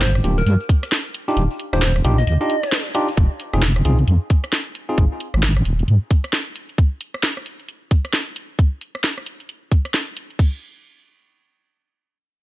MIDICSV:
0, 0, Header, 1, 5, 480
1, 0, Start_track
1, 0, Tempo, 451128
1, 1456, Time_signature, 4, 2, 24, 8
1, 13222, End_track
2, 0, Start_track
2, 0, Title_t, "Soft synth lead"
2, 0, Program_c, 0, 80
2, 17, Note_on_c, 0, 72, 76
2, 109, Note_off_c, 0, 72, 0
2, 403, Note_on_c, 0, 70, 92
2, 463, Note_off_c, 0, 70, 0
2, 499, Note_on_c, 0, 70, 79
2, 591, Note_off_c, 0, 70, 0
2, 1845, Note_on_c, 0, 72, 87
2, 1903, Note_off_c, 0, 72, 0
2, 1938, Note_on_c, 0, 72, 75
2, 2030, Note_off_c, 0, 72, 0
2, 2322, Note_on_c, 0, 75, 92
2, 2382, Note_off_c, 0, 75, 0
2, 2418, Note_on_c, 0, 75, 76
2, 2510, Note_off_c, 0, 75, 0
2, 2563, Note_on_c, 0, 75, 94
2, 2896, Note_off_c, 0, 75, 0
2, 13222, End_track
3, 0, Start_track
3, 0, Title_t, "Tine electric piano"
3, 0, Program_c, 1, 4
3, 255, Note_on_c, 1, 67, 90
3, 256, Note_on_c, 1, 58, 78
3, 256, Note_on_c, 1, 62, 75
3, 256, Note_on_c, 1, 65, 75
3, 384, Note_off_c, 1, 58, 0
3, 384, Note_off_c, 1, 62, 0
3, 384, Note_off_c, 1, 67, 0
3, 385, Note_off_c, 1, 65, 0
3, 1362, Note_on_c, 1, 62, 91
3, 1362, Note_on_c, 1, 63, 84
3, 1362, Note_on_c, 1, 67, 103
3, 1363, Note_on_c, 1, 65, 82
3, 1516, Note_off_c, 1, 62, 0
3, 1516, Note_off_c, 1, 63, 0
3, 1516, Note_off_c, 1, 65, 0
3, 1516, Note_off_c, 1, 67, 0
3, 1842, Note_on_c, 1, 67, 100
3, 1843, Note_on_c, 1, 62, 93
3, 1843, Note_on_c, 1, 63, 86
3, 1843, Note_on_c, 1, 65, 88
3, 1925, Note_off_c, 1, 62, 0
3, 1925, Note_off_c, 1, 63, 0
3, 1925, Note_off_c, 1, 65, 0
3, 1925, Note_off_c, 1, 67, 0
3, 2176, Note_on_c, 1, 63, 89
3, 2177, Note_on_c, 1, 62, 92
3, 2177, Note_on_c, 1, 65, 89
3, 2177, Note_on_c, 1, 67, 109
3, 2305, Note_off_c, 1, 62, 0
3, 2305, Note_off_c, 1, 63, 0
3, 2305, Note_off_c, 1, 65, 0
3, 2305, Note_off_c, 1, 67, 0
3, 2562, Note_on_c, 1, 62, 93
3, 2562, Note_on_c, 1, 67, 100
3, 2563, Note_on_c, 1, 63, 84
3, 2563, Note_on_c, 1, 65, 84
3, 2716, Note_off_c, 1, 62, 0
3, 2716, Note_off_c, 1, 63, 0
3, 2716, Note_off_c, 1, 65, 0
3, 2716, Note_off_c, 1, 67, 0
3, 3136, Note_on_c, 1, 67, 112
3, 3137, Note_on_c, 1, 62, 108
3, 3137, Note_on_c, 1, 63, 97
3, 3137, Note_on_c, 1, 65, 99
3, 3264, Note_off_c, 1, 67, 0
3, 3265, Note_off_c, 1, 62, 0
3, 3265, Note_off_c, 1, 63, 0
3, 3265, Note_off_c, 1, 65, 0
3, 3762, Note_on_c, 1, 60, 91
3, 3762, Note_on_c, 1, 65, 82
3, 3763, Note_on_c, 1, 63, 81
3, 3763, Note_on_c, 1, 68, 100
3, 3845, Note_off_c, 1, 60, 0
3, 3845, Note_off_c, 1, 63, 0
3, 3845, Note_off_c, 1, 65, 0
3, 3845, Note_off_c, 1, 68, 0
3, 4098, Note_on_c, 1, 60, 79
3, 4098, Note_on_c, 1, 63, 72
3, 4098, Note_on_c, 1, 65, 73
3, 4098, Note_on_c, 1, 68, 89
3, 4225, Note_off_c, 1, 60, 0
3, 4225, Note_off_c, 1, 63, 0
3, 4225, Note_off_c, 1, 65, 0
3, 4226, Note_off_c, 1, 68, 0
3, 5202, Note_on_c, 1, 68, 97
3, 5203, Note_on_c, 1, 60, 83
3, 5203, Note_on_c, 1, 63, 78
3, 5203, Note_on_c, 1, 65, 79
3, 5356, Note_off_c, 1, 60, 0
3, 5356, Note_off_c, 1, 63, 0
3, 5356, Note_off_c, 1, 65, 0
3, 5356, Note_off_c, 1, 68, 0
3, 13222, End_track
4, 0, Start_track
4, 0, Title_t, "Wobble bass"
4, 0, Program_c, 2, 39
4, 0, Note_on_c, 2, 31, 106
4, 224, Note_off_c, 2, 31, 0
4, 254, Note_on_c, 2, 26, 90
4, 457, Note_off_c, 2, 26, 0
4, 493, Note_on_c, 2, 43, 110
4, 610, Note_off_c, 2, 43, 0
4, 1455, Note_on_c, 2, 27, 107
4, 1571, Note_off_c, 2, 27, 0
4, 1841, Note_on_c, 2, 27, 109
4, 2145, Note_off_c, 2, 27, 0
4, 2175, Note_on_c, 2, 34, 87
4, 2377, Note_off_c, 2, 34, 0
4, 2416, Note_on_c, 2, 39, 107
4, 2532, Note_off_c, 2, 39, 0
4, 3377, Note_on_c, 2, 29, 105
4, 3493, Note_off_c, 2, 29, 0
4, 3762, Note_on_c, 2, 29, 103
4, 4065, Note_off_c, 2, 29, 0
4, 4097, Note_on_c, 2, 36, 84
4, 4298, Note_off_c, 2, 36, 0
4, 4337, Note_on_c, 2, 41, 105
4, 4452, Note_off_c, 2, 41, 0
4, 5297, Note_on_c, 2, 32, 101
4, 5412, Note_off_c, 2, 32, 0
4, 5681, Note_on_c, 2, 32, 100
4, 5985, Note_off_c, 2, 32, 0
4, 6017, Note_on_c, 2, 27, 83
4, 6218, Note_off_c, 2, 27, 0
4, 6256, Note_on_c, 2, 44, 102
4, 6372, Note_off_c, 2, 44, 0
4, 13222, End_track
5, 0, Start_track
5, 0, Title_t, "Drums"
5, 16, Note_on_c, 9, 38, 116
5, 16, Note_on_c, 9, 42, 67
5, 16, Note_on_c, 9, 54, 57
5, 123, Note_off_c, 9, 38, 0
5, 123, Note_off_c, 9, 42, 0
5, 123, Note_off_c, 9, 54, 0
5, 163, Note_on_c, 9, 37, 56
5, 163, Note_on_c, 9, 54, 32
5, 256, Note_on_c, 9, 46, 110
5, 269, Note_off_c, 9, 37, 0
5, 269, Note_off_c, 9, 54, 0
5, 363, Note_off_c, 9, 46, 0
5, 403, Note_on_c, 9, 42, 38
5, 403, Note_on_c, 9, 54, 62
5, 495, Note_off_c, 9, 42, 0
5, 495, Note_off_c, 9, 54, 0
5, 495, Note_on_c, 9, 42, 72
5, 495, Note_on_c, 9, 54, 56
5, 602, Note_off_c, 9, 42, 0
5, 602, Note_off_c, 9, 54, 0
5, 642, Note_on_c, 9, 54, 34
5, 737, Note_on_c, 9, 36, 97
5, 738, Note_on_c, 9, 46, 103
5, 749, Note_off_c, 9, 54, 0
5, 843, Note_off_c, 9, 36, 0
5, 844, Note_off_c, 9, 46, 0
5, 884, Note_on_c, 9, 37, 54
5, 884, Note_on_c, 9, 42, 71
5, 884, Note_on_c, 9, 54, 64
5, 978, Note_off_c, 9, 54, 0
5, 978, Note_on_c, 9, 38, 121
5, 978, Note_on_c, 9, 46, 64
5, 978, Note_on_c, 9, 54, 56
5, 990, Note_off_c, 9, 37, 0
5, 990, Note_off_c, 9, 42, 0
5, 1085, Note_off_c, 9, 38, 0
5, 1085, Note_off_c, 9, 46, 0
5, 1085, Note_off_c, 9, 54, 0
5, 1124, Note_on_c, 9, 54, 33
5, 1218, Note_on_c, 9, 46, 111
5, 1230, Note_off_c, 9, 54, 0
5, 1324, Note_off_c, 9, 46, 0
5, 1363, Note_on_c, 9, 54, 67
5, 1456, Note_off_c, 9, 54, 0
5, 1456, Note_on_c, 9, 42, 71
5, 1456, Note_on_c, 9, 54, 56
5, 1562, Note_off_c, 9, 42, 0
5, 1562, Note_off_c, 9, 54, 0
5, 1603, Note_on_c, 9, 54, 32
5, 1697, Note_on_c, 9, 46, 116
5, 1709, Note_off_c, 9, 54, 0
5, 1804, Note_off_c, 9, 46, 0
5, 1842, Note_on_c, 9, 37, 71
5, 1842, Note_on_c, 9, 54, 62
5, 1936, Note_off_c, 9, 54, 0
5, 1936, Note_on_c, 9, 38, 119
5, 1936, Note_on_c, 9, 42, 69
5, 1936, Note_on_c, 9, 54, 53
5, 1949, Note_off_c, 9, 37, 0
5, 2043, Note_off_c, 9, 38, 0
5, 2043, Note_off_c, 9, 42, 0
5, 2043, Note_off_c, 9, 54, 0
5, 2084, Note_on_c, 9, 37, 59
5, 2084, Note_on_c, 9, 54, 33
5, 2176, Note_on_c, 9, 46, 112
5, 2190, Note_off_c, 9, 37, 0
5, 2190, Note_off_c, 9, 54, 0
5, 2283, Note_off_c, 9, 46, 0
5, 2323, Note_on_c, 9, 42, 35
5, 2323, Note_on_c, 9, 54, 60
5, 2417, Note_off_c, 9, 42, 0
5, 2417, Note_off_c, 9, 54, 0
5, 2417, Note_on_c, 9, 42, 72
5, 2417, Note_on_c, 9, 54, 53
5, 2524, Note_off_c, 9, 42, 0
5, 2524, Note_off_c, 9, 54, 0
5, 2563, Note_on_c, 9, 54, 34
5, 2656, Note_on_c, 9, 46, 109
5, 2669, Note_off_c, 9, 54, 0
5, 2763, Note_off_c, 9, 46, 0
5, 2802, Note_on_c, 9, 37, 56
5, 2802, Note_on_c, 9, 42, 67
5, 2802, Note_on_c, 9, 54, 64
5, 2897, Note_off_c, 9, 42, 0
5, 2897, Note_off_c, 9, 54, 0
5, 2897, Note_on_c, 9, 38, 119
5, 2897, Note_on_c, 9, 42, 68
5, 2897, Note_on_c, 9, 54, 54
5, 2909, Note_off_c, 9, 37, 0
5, 3003, Note_off_c, 9, 38, 0
5, 3003, Note_off_c, 9, 42, 0
5, 3003, Note_off_c, 9, 54, 0
5, 3043, Note_on_c, 9, 54, 33
5, 3135, Note_on_c, 9, 46, 117
5, 3149, Note_off_c, 9, 54, 0
5, 3242, Note_off_c, 9, 46, 0
5, 3282, Note_on_c, 9, 42, 41
5, 3282, Note_on_c, 9, 54, 65
5, 3376, Note_off_c, 9, 42, 0
5, 3376, Note_on_c, 9, 42, 64
5, 3377, Note_on_c, 9, 36, 119
5, 3389, Note_off_c, 9, 54, 0
5, 3482, Note_off_c, 9, 42, 0
5, 3484, Note_off_c, 9, 36, 0
5, 3614, Note_on_c, 9, 46, 111
5, 3720, Note_off_c, 9, 46, 0
5, 3761, Note_on_c, 9, 37, 72
5, 3856, Note_on_c, 9, 38, 120
5, 3856, Note_on_c, 9, 42, 67
5, 3867, Note_off_c, 9, 37, 0
5, 3963, Note_off_c, 9, 38, 0
5, 3963, Note_off_c, 9, 42, 0
5, 4002, Note_on_c, 9, 37, 59
5, 4096, Note_on_c, 9, 46, 108
5, 4108, Note_off_c, 9, 37, 0
5, 4202, Note_off_c, 9, 46, 0
5, 4243, Note_on_c, 9, 42, 35
5, 4336, Note_off_c, 9, 42, 0
5, 4336, Note_on_c, 9, 42, 67
5, 4442, Note_off_c, 9, 42, 0
5, 4575, Note_on_c, 9, 46, 107
5, 4577, Note_on_c, 9, 36, 103
5, 4681, Note_off_c, 9, 46, 0
5, 4684, Note_off_c, 9, 36, 0
5, 4722, Note_on_c, 9, 37, 58
5, 4722, Note_on_c, 9, 42, 64
5, 4816, Note_on_c, 9, 38, 113
5, 4816, Note_on_c, 9, 46, 64
5, 4828, Note_off_c, 9, 37, 0
5, 4828, Note_off_c, 9, 42, 0
5, 4923, Note_off_c, 9, 38, 0
5, 4923, Note_off_c, 9, 46, 0
5, 5055, Note_on_c, 9, 46, 111
5, 5161, Note_off_c, 9, 46, 0
5, 5296, Note_on_c, 9, 42, 59
5, 5297, Note_on_c, 9, 36, 124
5, 5402, Note_off_c, 9, 42, 0
5, 5403, Note_off_c, 9, 36, 0
5, 5537, Note_on_c, 9, 46, 104
5, 5643, Note_off_c, 9, 46, 0
5, 5682, Note_on_c, 9, 37, 68
5, 5776, Note_on_c, 9, 38, 124
5, 5776, Note_on_c, 9, 42, 60
5, 5789, Note_off_c, 9, 37, 0
5, 5882, Note_off_c, 9, 38, 0
5, 5882, Note_off_c, 9, 42, 0
5, 5922, Note_on_c, 9, 37, 57
5, 6015, Note_on_c, 9, 46, 104
5, 6028, Note_off_c, 9, 37, 0
5, 6121, Note_off_c, 9, 46, 0
5, 6162, Note_on_c, 9, 42, 30
5, 6257, Note_off_c, 9, 42, 0
5, 6257, Note_on_c, 9, 42, 60
5, 6363, Note_off_c, 9, 42, 0
5, 6496, Note_on_c, 9, 46, 99
5, 6497, Note_on_c, 9, 36, 104
5, 6602, Note_off_c, 9, 46, 0
5, 6604, Note_off_c, 9, 36, 0
5, 6641, Note_on_c, 9, 37, 56
5, 6641, Note_on_c, 9, 42, 58
5, 6735, Note_off_c, 9, 42, 0
5, 6735, Note_on_c, 9, 38, 119
5, 6735, Note_on_c, 9, 42, 61
5, 6748, Note_off_c, 9, 37, 0
5, 6841, Note_off_c, 9, 38, 0
5, 6841, Note_off_c, 9, 42, 0
5, 6975, Note_on_c, 9, 46, 107
5, 7082, Note_off_c, 9, 46, 0
5, 7121, Note_on_c, 9, 42, 36
5, 7216, Note_off_c, 9, 42, 0
5, 7216, Note_on_c, 9, 42, 63
5, 7217, Note_on_c, 9, 36, 120
5, 7322, Note_off_c, 9, 42, 0
5, 7323, Note_off_c, 9, 36, 0
5, 7455, Note_on_c, 9, 46, 99
5, 7561, Note_off_c, 9, 46, 0
5, 7601, Note_on_c, 9, 37, 67
5, 7696, Note_on_c, 9, 38, 122
5, 7696, Note_on_c, 9, 42, 58
5, 7708, Note_off_c, 9, 37, 0
5, 7802, Note_off_c, 9, 38, 0
5, 7802, Note_off_c, 9, 42, 0
5, 7843, Note_on_c, 9, 37, 56
5, 7937, Note_on_c, 9, 46, 97
5, 7949, Note_off_c, 9, 37, 0
5, 8043, Note_off_c, 9, 46, 0
5, 8082, Note_on_c, 9, 42, 31
5, 8176, Note_off_c, 9, 42, 0
5, 8176, Note_on_c, 9, 42, 60
5, 8282, Note_off_c, 9, 42, 0
5, 8416, Note_on_c, 9, 46, 96
5, 8417, Note_on_c, 9, 36, 106
5, 8523, Note_off_c, 9, 46, 0
5, 8524, Note_off_c, 9, 36, 0
5, 8562, Note_on_c, 9, 37, 54
5, 8562, Note_on_c, 9, 42, 57
5, 8655, Note_on_c, 9, 38, 124
5, 8655, Note_on_c, 9, 46, 55
5, 8669, Note_off_c, 9, 37, 0
5, 8669, Note_off_c, 9, 42, 0
5, 8761, Note_off_c, 9, 38, 0
5, 8761, Note_off_c, 9, 46, 0
5, 8896, Note_on_c, 9, 46, 102
5, 9002, Note_off_c, 9, 46, 0
5, 9137, Note_on_c, 9, 36, 116
5, 9137, Note_on_c, 9, 42, 62
5, 9243, Note_off_c, 9, 42, 0
5, 9244, Note_off_c, 9, 36, 0
5, 9377, Note_on_c, 9, 46, 98
5, 9484, Note_off_c, 9, 46, 0
5, 9522, Note_on_c, 9, 37, 64
5, 9617, Note_on_c, 9, 38, 114
5, 9617, Note_on_c, 9, 42, 60
5, 9629, Note_off_c, 9, 37, 0
5, 9723, Note_off_c, 9, 38, 0
5, 9723, Note_off_c, 9, 42, 0
5, 9764, Note_on_c, 9, 37, 52
5, 9856, Note_on_c, 9, 46, 92
5, 9870, Note_off_c, 9, 37, 0
5, 9963, Note_off_c, 9, 46, 0
5, 10003, Note_on_c, 9, 42, 32
5, 10097, Note_off_c, 9, 42, 0
5, 10097, Note_on_c, 9, 42, 60
5, 10204, Note_off_c, 9, 42, 0
5, 10337, Note_on_c, 9, 36, 100
5, 10337, Note_on_c, 9, 46, 92
5, 10444, Note_off_c, 9, 36, 0
5, 10444, Note_off_c, 9, 46, 0
5, 10482, Note_on_c, 9, 37, 51
5, 10482, Note_on_c, 9, 42, 57
5, 10577, Note_off_c, 9, 42, 0
5, 10577, Note_on_c, 9, 38, 115
5, 10577, Note_on_c, 9, 42, 62
5, 10589, Note_off_c, 9, 37, 0
5, 10683, Note_off_c, 9, 38, 0
5, 10683, Note_off_c, 9, 42, 0
5, 10816, Note_on_c, 9, 46, 97
5, 10923, Note_off_c, 9, 46, 0
5, 10964, Note_on_c, 9, 42, 34
5, 11056, Note_on_c, 9, 36, 100
5, 11057, Note_on_c, 9, 49, 84
5, 11070, Note_off_c, 9, 42, 0
5, 11163, Note_off_c, 9, 36, 0
5, 11163, Note_off_c, 9, 49, 0
5, 13222, End_track
0, 0, End_of_file